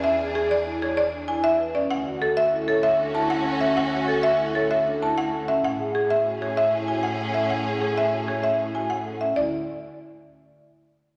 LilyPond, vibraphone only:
\new Staff \with { instrumentName = "Vibraphone" } { \time 6/4 \key d \lydian \tempo 4 = 193 r8 gis'8 gis'8 r8 e'8 cis''8 r8 d'8 e'8 r8 b'8 cis'8 | r8 fis'8 fis'8 r8 e'8 cis''8 r8 d'8 e'8 r8 a'8 cis'8 | r8 fis'8 fis'8 r8 e'8 cis''8 r8 d'8 e'8 r8 a'8 cis'8 | r8 gis'8 gis'8 r8 fis'8 cis''8 r8 e'8 fis'8 r8 a'8 cis'8 |
r8 gis'8 gis'8 r8 fis'8 cis''8 r8 e'8 fis'8 r8 a'8 cis'8 | e'8 r1 r4. | }